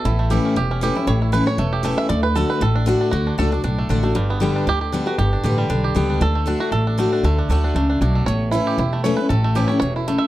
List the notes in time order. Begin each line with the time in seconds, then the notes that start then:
Already playing: A3 A4
0.05 A1 A2 E4
0.19 A3
0.30 E3 A3 C#4 E4 G4
0.45 C#4
0.56 E1 E2 G4
0.71 C#4
0.81 E3 A3 C#4 E4 G4
0.95 C#4 E4
1.07 A1 A2 C#5
1.22 E4
1.32 E3 A3 C#4 E4 B4
1.46 C#4 E4 C#5
1.58 E1 E2 A3
1.73 G4
1.83 E3 A3 C#4 E4
1.98 E5
2.09 D2 D3 D5
2.23 B4
2.35 D3 A3 D4 F#4 A4
2.50 B4
2.61 A1 A2 A4
2.75 D4
2.86 D3 A3 D4 F#4
3.01 D4
3.11 D2 D3 F#4
3.27 D4
3.38 C#2 D3 A3 D4 F#4 A4
3.52 D4 F#4
3.64 B1 A2 D4
3.78 A3
3.89 A1 D3 A3 D4 F#4
4.03 A3 D4 F#4
4.15 G1 G2 G3
4.30 B3
4.40 D3 G3 B3 G4
4.56 D4
4.67 D2 D3 G4
4.81 G4
4.92 D3 G3 B3 D4 G4
5.06 B3 F#4 G4
5.18 G1 G2 G4
5.33 D4
5.43 A1 D3 G3 B3 G4
5.58 G3
5.69 B1 D3 D4
5.84 G4
5.95 C#2 D3 G3 B3 G4
6.10 D4
6.20 D2 D3 A4
6.35 A3
6.46 D3 A3 D4 F#4
6.60 F#4
6.72 A1 A2 A4
6.87 D4
6.98 D3 A3 D4 F#4
7.13 D4
7.23 D2 D3 A3
7.38 D4
7.49 D2 D3 A3 D4 F#4
7.64 D4
7.75 C#2 C#3 A3
7.90 D4
8.01 B1 B2 D4
8.15 A3
8.26 A1 A2 C#5
8.51 E3 A3 C#4 E4
8.67 G4
8.78 E1 E2 E4
8.93 A3
9.04 E3 A3 C#4 E4 C#5
9.17 C#4 E4 B4
9.29 A1 A2 A4
9.44 A3
9.55 E3 A3 C#4 E4 G4
9.68 C#4 E4 C#5
9.80 E1 B2 C#5
9.96 E4
10.08 C#3 A3
10.18 E5